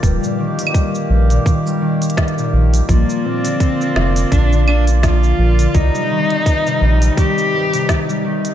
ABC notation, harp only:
X:1
M:4/4
L:1/16
Q:"Swing 16ths" 1/4=84
K:Bb
V:1 name="Harp" clef=bass
G,, B,, E, G, E,2 G,, B,, E, G, E,2 G,, B,, E, G, | F,2 B,, D, D, B, F,2 B,, D, D, B, F,2 B,, D, | C, G, E,2 G,, C, C, G, E,2 G,, C, C, G, E,2 |]